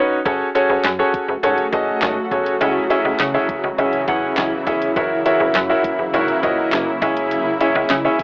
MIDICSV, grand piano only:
0, 0, Header, 1, 2, 480
1, 0, Start_track
1, 0, Tempo, 588235
1, 208, Time_signature, 4, 2, 24, 8
1, 6717, End_track
2, 0, Start_track
2, 0, Title_t, "Grand piano"
2, 0, Program_c, 0, 0
2, 0, Note_on_c, 0, 61, 92
2, 0, Note_on_c, 0, 63, 84
2, 0, Note_on_c, 0, 66, 80
2, 0, Note_on_c, 0, 71, 82
2, 0, Note_on_c, 0, 73, 97
2, 142, Note_off_c, 0, 61, 0
2, 143, Note_off_c, 0, 63, 0
2, 143, Note_off_c, 0, 66, 0
2, 144, Note_off_c, 0, 71, 0
2, 144, Note_off_c, 0, 73, 0
2, 206, Note_on_c, 0, 61, 96
2, 207, Note_on_c, 0, 66, 85
2, 208, Note_on_c, 0, 68, 86
2, 209, Note_on_c, 0, 69, 88
2, 211, Note_on_c, 0, 73, 100
2, 382, Note_off_c, 0, 61, 0
2, 383, Note_off_c, 0, 66, 0
2, 383, Note_off_c, 0, 68, 0
2, 384, Note_off_c, 0, 69, 0
2, 384, Note_off_c, 0, 73, 0
2, 447, Note_on_c, 0, 61, 94
2, 448, Note_on_c, 0, 66, 86
2, 449, Note_on_c, 0, 68, 88
2, 450, Note_on_c, 0, 69, 83
2, 451, Note_on_c, 0, 73, 103
2, 710, Note_off_c, 0, 61, 0
2, 711, Note_off_c, 0, 66, 0
2, 711, Note_off_c, 0, 68, 0
2, 712, Note_off_c, 0, 69, 0
2, 712, Note_off_c, 0, 73, 0
2, 806, Note_on_c, 0, 61, 91
2, 807, Note_on_c, 0, 66, 83
2, 808, Note_on_c, 0, 68, 82
2, 809, Note_on_c, 0, 69, 82
2, 811, Note_on_c, 0, 73, 99
2, 1070, Note_off_c, 0, 61, 0
2, 1071, Note_off_c, 0, 66, 0
2, 1071, Note_off_c, 0, 68, 0
2, 1071, Note_off_c, 0, 69, 0
2, 1072, Note_off_c, 0, 73, 0
2, 1167, Note_on_c, 0, 61, 88
2, 1167, Note_on_c, 0, 66, 84
2, 1169, Note_on_c, 0, 68, 85
2, 1170, Note_on_c, 0, 69, 87
2, 1171, Note_on_c, 0, 73, 104
2, 1343, Note_off_c, 0, 61, 0
2, 1343, Note_off_c, 0, 66, 0
2, 1344, Note_off_c, 0, 68, 0
2, 1344, Note_off_c, 0, 69, 0
2, 1345, Note_off_c, 0, 73, 0
2, 1407, Note_on_c, 0, 61, 90
2, 1408, Note_on_c, 0, 66, 85
2, 1409, Note_on_c, 0, 68, 89
2, 1410, Note_on_c, 0, 69, 87
2, 1411, Note_on_c, 0, 75, 103
2, 1758, Note_off_c, 0, 61, 0
2, 1758, Note_off_c, 0, 66, 0
2, 1759, Note_off_c, 0, 68, 0
2, 1759, Note_off_c, 0, 69, 0
2, 1760, Note_off_c, 0, 75, 0
2, 1887, Note_on_c, 0, 61, 91
2, 1888, Note_on_c, 0, 66, 87
2, 1889, Note_on_c, 0, 68, 84
2, 1890, Note_on_c, 0, 69, 85
2, 1891, Note_on_c, 0, 73, 105
2, 2063, Note_off_c, 0, 61, 0
2, 2063, Note_off_c, 0, 66, 0
2, 2064, Note_off_c, 0, 68, 0
2, 2064, Note_off_c, 0, 69, 0
2, 2065, Note_off_c, 0, 73, 0
2, 2127, Note_on_c, 0, 61, 91
2, 2128, Note_on_c, 0, 64, 85
2, 2129, Note_on_c, 0, 68, 85
2, 2130, Note_on_c, 0, 73, 83
2, 2131, Note_on_c, 0, 76, 99
2, 2303, Note_off_c, 0, 61, 0
2, 2303, Note_off_c, 0, 64, 0
2, 2304, Note_off_c, 0, 68, 0
2, 2304, Note_off_c, 0, 73, 0
2, 2305, Note_off_c, 0, 76, 0
2, 2367, Note_on_c, 0, 61, 97
2, 2368, Note_on_c, 0, 64, 84
2, 2369, Note_on_c, 0, 68, 86
2, 2370, Note_on_c, 0, 73, 84
2, 2371, Note_on_c, 0, 76, 103
2, 2630, Note_off_c, 0, 61, 0
2, 2631, Note_off_c, 0, 64, 0
2, 2631, Note_off_c, 0, 68, 0
2, 2632, Note_off_c, 0, 73, 0
2, 2632, Note_off_c, 0, 76, 0
2, 2727, Note_on_c, 0, 61, 89
2, 2727, Note_on_c, 0, 64, 80
2, 2728, Note_on_c, 0, 68, 82
2, 2729, Note_on_c, 0, 73, 81
2, 2731, Note_on_c, 0, 76, 96
2, 2990, Note_off_c, 0, 61, 0
2, 2990, Note_off_c, 0, 64, 0
2, 2991, Note_off_c, 0, 68, 0
2, 2991, Note_off_c, 0, 73, 0
2, 2992, Note_off_c, 0, 76, 0
2, 3087, Note_on_c, 0, 61, 96
2, 3087, Note_on_c, 0, 64, 82
2, 3089, Note_on_c, 0, 68, 84
2, 3089, Note_on_c, 0, 73, 83
2, 3091, Note_on_c, 0, 76, 103
2, 3262, Note_off_c, 0, 61, 0
2, 3263, Note_off_c, 0, 64, 0
2, 3264, Note_off_c, 0, 68, 0
2, 3264, Note_off_c, 0, 73, 0
2, 3265, Note_off_c, 0, 76, 0
2, 3327, Note_on_c, 0, 61, 96
2, 3328, Note_on_c, 0, 64, 85
2, 3329, Note_on_c, 0, 68, 87
2, 3330, Note_on_c, 0, 73, 88
2, 3331, Note_on_c, 0, 78, 106
2, 3678, Note_off_c, 0, 61, 0
2, 3678, Note_off_c, 0, 64, 0
2, 3679, Note_off_c, 0, 68, 0
2, 3679, Note_off_c, 0, 73, 0
2, 3680, Note_off_c, 0, 78, 0
2, 3807, Note_on_c, 0, 61, 94
2, 3808, Note_on_c, 0, 64, 88
2, 3808, Note_on_c, 0, 68, 84
2, 3810, Note_on_c, 0, 73, 81
2, 3811, Note_on_c, 0, 76, 103
2, 3982, Note_off_c, 0, 61, 0
2, 3983, Note_off_c, 0, 64, 0
2, 3983, Note_off_c, 0, 68, 0
2, 3984, Note_off_c, 0, 73, 0
2, 3985, Note_off_c, 0, 76, 0
2, 4046, Note_on_c, 0, 64, 89
2, 4048, Note_on_c, 0, 66, 88
2, 4048, Note_on_c, 0, 70, 87
2, 4049, Note_on_c, 0, 73, 86
2, 4051, Note_on_c, 0, 76, 104
2, 4222, Note_off_c, 0, 64, 0
2, 4223, Note_off_c, 0, 66, 0
2, 4223, Note_off_c, 0, 70, 0
2, 4224, Note_off_c, 0, 73, 0
2, 4225, Note_off_c, 0, 76, 0
2, 4287, Note_on_c, 0, 64, 95
2, 4287, Note_on_c, 0, 66, 85
2, 4288, Note_on_c, 0, 70, 86
2, 4289, Note_on_c, 0, 73, 87
2, 4290, Note_on_c, 0, 76, 105
2, 4550, Note_off_c, 0, 64, 0
2, 4550, Note_off_c, 0, 66, 0
2, 4551, Note_off_c, 0, 70, 0
2, 4551, Note_off_c, 0, 73, 0
2, 4552, Note_off_c, 0, 76, 0
2, 4646, Note_on_c, 0, 64, 91
2, 4648, Note_on_c, 0, 66, 83
2, 4649, Note_on_c, 0, 70, 81
2, 4649, Note_on_c, 0, 73, 81
2, 4650, Note_on_c, 0, 76, 101
2, 4910, Note_off_c, 0, 64, 0
2, 4911, Note_off_c, 0, 66, 0
2, 4911, Note_off_c, 0, 70, 0
2, 4912, Note_off_c, 0, 73, 0
2, 4912, Note_off_c, 0, 76, 0
2, 5005, Note_on_c, 0, 64, 92
2, 5006, Note_on_c, 0, 66, 83
2, 5007, Note_on_c, 0, 70, 87
2, 5008, Note_on_c, 0, 73, 82
2, 5010, Note_on_c, 0, 76, 99
2, 5182, Note_off_c, 0, 64, 0
2, 5182, Note_off_c, 0, 66, 0
2, 5183, Note_off_c, 0, 70, 0
2, 5183, Note_off_c, 0, 73, 0
2, 5184, Note_off_c, 0, 76, 0
2, 5246, Note_on_c, 0, 64, 95
2, 5247, Note_on_c, 0, 66, 86
2, 5248, Note_on_c, 0, 70, 89
2, 5249, Note_on_c, 0, 73, 89
2, 5250, Note_on_c, 0, 75, 106
2, 5597, Note_off_c, 0, 64, 0
2, 5598, Note_off_c, 0, 66, 0
2, 5598, Note_off_c, 0, 70, 0
2, 5599, Note_off_c, 0, 73, 0
2, 5599, Note_off_c, 0, 75, 0
2, 5725, Note_on_c, 0, 61, 95
2, 5726, Note_on_c, 0, 64, 89
2, 5728, Note_on_c, 0, 68, 91
2, 5729, Note_on_c, 0, 73, 89
2, 5729, Note_on_c, 0, 76, 109
2, 6111, Note_off_c, 0, 61, 0
2, 6111, Note_off_c, 0, 64, 0
2, 6112, Note_off_c, 0, 68, 0
2, 6112, Note_off_c, 0, 73, 0
2, 6113, Note_off_c, 0, 76, 0
2, 6206, Note_on_c, 0, 61, 93
2, 6207, Note_on_c, 0, 64, 86
2, 6208, Note_on_c, 0, 68, 85
2, 6209, Note_on_c, 0, 73, 87
2, 6210, Note_on_c, 0, 76, 104
2, 6470, Note_off_c, 0, 61, 0
2, 6470, Note_off_c, 0, 64, 0
2, 6471, Note_off_c, 0, 68, 0
2, 6471, Note_off_c, 0, 73, 0
2, 6472, Note_off_c, 0, 76, 0
2, 6566, Note_on_c, 0, 61, 92
2, 6567, Note_on_c, 0, 64, 78
2, 6568, Note_on_c, 0, 68, 81
2, 6569, Note_on_c, 0, 73, 82
2, 6570, Note_on_c, 0, 76, 96
2, 6717, Note_off_c, 0, 61, 0
2, 6717, Note_off_c, 0, 64, 0
2, 6717, Note_off_c, 0, 68, 0
2, 6717, Note_off_c, 0, 73, 0
2, 6717, Note_off_c, 0, 76, 0
2, 6717, End_track
0, 0, End_of_file